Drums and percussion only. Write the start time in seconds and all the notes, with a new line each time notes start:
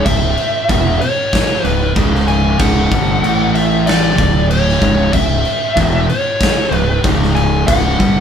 0.06 kick, crash
0.38 crash
0.69 kick, crash
1.01 crash
1.33 kick, snare, crash
1.65 crash
1.96 kick, crash
2.15 snare
2.28 crash
2.59 kick, crash
2.92 kick, crash
3.24 crash
3.55 crash
3.87 snare, crash
4.18 kick, crash
4.51 crash
4.69 snare
4.82 kick, crash
5.13 kick, crash
5.45 crash
5.77 kick, crash
6.09 crash
6.41 kick, snare, crash
6.72 crash
7.04 kick, crash
7.23 snare
7.36 crash
7.68 kick, crash
8.00 kick, crash